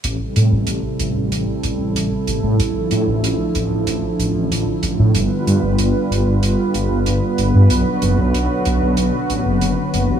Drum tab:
HH |xxxxxxxx|xxxxxxxx|xxxxxxxx|xxxxxxxx|